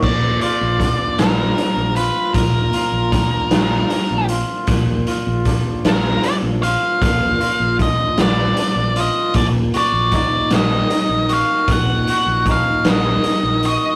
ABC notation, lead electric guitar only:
X:1
M:6/8
L:1/8
Q:3/8=51
K:none
V:1 name="Lead electric guitar"
d d2 _B2 _c | _B4- B z | z3 _B d f | f2 _e d2 e |
d d d _e2 f | _g2 f _e2 e |]